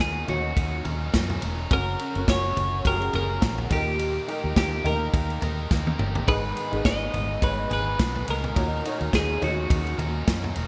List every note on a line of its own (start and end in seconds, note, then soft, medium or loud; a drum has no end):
0.00 0.23 D#2 loud
0.00 0.24 A#2 medium
0.00 1.13 F#3 medium
0.00 0.87 C#4 medium
0.00 0.27 D#4 medium
0.00 0.85 D#4 medium
0.00 0.28 F#4 medium
0.00 0.29 G#4 medium
0.00 0.84 A#4 medium
0.00 0.29 C#5 medium
0.00 ride medium
0.27 0.52 D#2 medium
0.27 1.22 D#4 medium
0.27 1.22 F#4 medium
0.27 0.82 F#4 medium
0.27 1.23 C#5 medium
0.27 floor tom medium
0.27 ride medium
0.57 0.80 D#2 medium
0.57 kick loud
0.57 ride medium
0.85 1.09 D#2 loud
0.85 1.13 C#4 soft
0.85 1.14 D#4 soft
0.85 1.14 A#4 medium
0.85 floor tom medium
0.85 ride medium
1.13 1.37 F#2 medium
1.13 1.42 F#3 medium
1.13 1.43 C#4 medium
1.13 1.42 D#4 medium
1.13 1.41 A#4 medium
1.13 kick loud
1.13 snare loud
1.13 ride medium
1.30 floor tom medium
1.42 1.66 E1 medium
1.42 1.70 C#4 soft
1.42 1.72 D#4 medium
1.42 1.71 A#4 medium
1.42 ride medium
1.70 1.95 F#1 loud
1.70 2.53 C#3 medium
1.70 1.99 F#3 medium
1.70 2.07 C#4 medium
1.70 2.00 C#4 medium
1.70 2.07 F#4 medium
1.70 1.99 F#4 loud
1.70 2.07 A#4 medium
1.70 1.98 A#4 medium
1.70 2.29 A#4 medium
1.70 kick loud
1.70 ride medium
1.99 2.28 C#4 soft
1.99 2.29 F#4 medium
1.99 2.28 A#4 medium
1.99 ride medium
2.15 2.26 F#1 medium
2.15 2.74 C#4 medium
2.15 2.74 F#4 medium
2.15 2.74 A#4 medium
2.15 ride soft
2.28 2.52 F#1 loud
2.28 3.14 F#3 medium
2.28 3.14 C#4 medium
2.28 3.14 F#4 medium
2.28 3.13 A#4 medium
2.28 2.87 C#5 loud
2.28 kick loud
2.28 snare loud
2.28 ride medium
2.57 2.80 F#1 medium
2.57 floor tom medium
2.57 ride medium
2.84 3.08 F#1 medium
2.84 3.71 C#4 medium
2.84 3.71 F#4 medium
2.84 2.93 G4 medium
2.84 3.14 A#4 loud
2.84 kick loud
2.84 ride medium
2.92 3.74 G#4 medium
3.02 ride soft
3.13 3.37 F#1 medium
3.13 3.41 C#4 soft
3.13 3.42 F#4 soft
3.13 3.42 A#4 medium
3.13 3.73 A#4 loud
3.13 floor tom medium
3.13 ride medium
3.41 3.66 A#1 medium
3.41 3.70 F#3 medium
3.41 3.71 C#4 medium
3.41 3.71 F#4 medium
3.41 3.69 A#4 medium
3.41 kick loud
3.41 snare loud
3.41 ride medium
3.58 floor tom medium
3.70 4.18 D#2 medium
3.70 4.53 A#2 medium
3.70 4.19 D#4 medium
3.70 3.98 D#4 soft
3.70 4.19 G4 medium
3.70 3.99 G4 medium
3.70 4.56 G4 medium
3.70 3.99 A#4 soft
3.70 4.20 A#4 medium
3.70 kick loud
3.70 ride medium
3.98 4.27 D#3 medium
3.98 4.28 A#3 medium
3.98 4.28 D#4 loud
3.98 4.27 G4 medium
3.98 4.25 A#4 medium
3.98 ride medium
4.27 4.76 D#4 medium
4.27 4.56 D#4 soft
4.27 4.76 G4 medium
4.27 4.56 G4 medium
4.27 4.56 A#4 medium
4.27 4.76 A#4 medium
4.27 ride medium
4.44 4.54 D#2 medium
4.56 4.80 D#2 loud
4.56 5.42 A#3 medium
4.56 5.43 D#4 medium
4.56 5.41 G4 medium
4.56 4.87 G4 medium
4.56 5.40 A#4 medium
4.56 kick loud
4.56 snare loud
4.56 ride medium
4.84 5.08 D#2 medium
4.84 5.79 D#4 medium
4.84 5.79 G4 medium
4.84 5.79 A#4 medium
4.84 5.39 A#4 medium
4.84 floor tom medium
4.84 ride medium
5.14 5.37 D#2 medium
5.14 kick loud
5.14 ride medium
5.30 ride soft
5.41 5.65 D#2 medium
5.41 5.70 D#4 soft
5.41 5.71 G4 soft
5.41 5.70 A#4 medium
5.41 floor tom medium
5.41 ride medium
5.70 5.94 D#2 medium
5.70 5.99 A#3 medium
5.70 5.99 D#4 medium
5.70 5.99 G4 medium
5.70 5.97 A#4 medium
5.70 kick loud
5.70 snare medium
5.87 high tom medium
5.98 6.23 G1 medium
5.98 6.27 D#4 soft
5.98 6.28 G4 medium
5.98 6.27 A#4 soft
5.98 mid tom loud
6.15 floor tom medium
6.27 6.51 G#1 loud
6.27 6.56 G#2 medium
6.27 7.10 G#2 medium
6.27 6.56 D#3 medium
6.27 7.10 D#3 medium
6.27 6.57 G#3 medium
6.27 6.57 B3 medium
6.27 6.63 D#4 medium
6.27 6.56 D#4 loud
6.27 6.64 G#4 medium
6.27 6.54 G#4 loud
6.27 6.81 B4 loud
6.27 6.64 B4 medium
6.27 kick loud
6.27 ride medium
6.55 6.83 G#3 medium
6.55 6.84 B3 medium
6.55 6.85 D#4 medium
6.55 6.84 G#4 medium
6.55 ride medium
6.72 6.83 G#1 medium
6.72 7.30 D#4 medium
6.72 7.31 G#4 medium
6.72 7.31 B4 medium
6.72 ride soft
6.84 7.70 G#3 medium
6.84 7.71 B3 medium
6.84 7.71 D#4 medium
6.84 7.69 G#4 medium
6.84 7.43 D#5 loud
6.84 kick loud
6.84 snare loud
6.84 ride medium
7.14 7.37 G#1 medium
7.14 floor tom medium
7.14 ride medium
7.42 7.65 G#1 medium
7.42 8.36 D#4 medium
7.42 8.36 G#4 medium
7.42 7.72 B4 medium
7.42 8.37 C#5 medium
7.42 kick loud
7.42 ride medium
7.70 7.94 G#1 medium
7.70 7.97 G#3 soft
7.70 7.98 B3 soft
7.70 7.99 D#4 medium
7.70 7.99 G#4 medium
7.70 8.30 B4 loud
7.70 floor tom medium
7.70 ride medium
7.98 8.23 B1 loud
7.98 8.27 G#3 medium
7.98 8.28 B3 medium
7.98 8.28 D#4 medium
7.98 8.26 G#4 medium
7.98 kick loud
7.98 snare loud
7.98 ride medium
8.16 floor tom medium
8.27 8.51 C#2 medium
8.27 8.56 G#3 soft
8.27 8.57 B3 soft
8.27 8.56 D#4 soft
8.27 8.56 G#4 medium
8.27 9.17 A#4 medium
8.27 ride medium
8.44 floor tom medium
8.56 8.80 D#2 loud
8.56 9.38 A#2 medium
8.56 8.85 D#3 medium
8.56 8.85 F#3 medium
8.56 8.85 C#4 medium
8.56 8.80 D#4 medium
8.56 8.85 D#4 loud
8.56 8.81 F#4 medium
8.56 8.83 A#4 medium
8.56 8.81 C#5 medium
8.56 kick loud
8.56 ride medium
8.84 9.12 C#4 medium
8.84 9.33 D#4 medium
8.84 9.13 D#4 soft
8.84 9.33 F#4 medium
8.84 9.13 A#4 medium
8.84 9.33 C#5 medium
8.84 ride medium
9.01 9.11 D#2 medium
9.01 ride soft
9.12 9.37 D#2 loud
9.12 10.26 F#3 medium
9.12 10.01 C#4 medium
9.12 9.99 D#4 medium
9.12 9.43 G#4 medium
9.12 9.97 A#4 medium
9.12 kick loud
9.12 snare medium
9.12 ride medium
9.41 9.65 D#2 loud
9.41 10.36 D#4 medium
9.41 10.36 F#4 medium
9.41 9.96 F#4 medium
9.41 10.37 C#5 medium
9.41 floor tom medium
9.41 ride medium
9.70 9.94 D#2 loud
9.70 kick loud
9.70 ride medium
9.87 ride soft
9.98 10.22 D#2 loud
9.98 10.27 C#4 soft
9.98 10.28 D#4 soft
9.98 10.27 A#4 medium
9.98 floor tom medium
9.98 ride medium
10.27 10.51 F#2 medium
10.27 10.56 F#3 medium
10.27 10.56 C#4 medium
10.27 10.56 D#4 medium
10.27 10.54 A#4 medium
10.27 kick loud
10.27 snare loud
10.27 ride medium
10.44 floor tom medium
10.56 10.67 E1 medium
10.56 10.67 C#4 soft
10.56 10.67 D#4 soft
10.56 10.67 A#4 soft
10.56 ride medium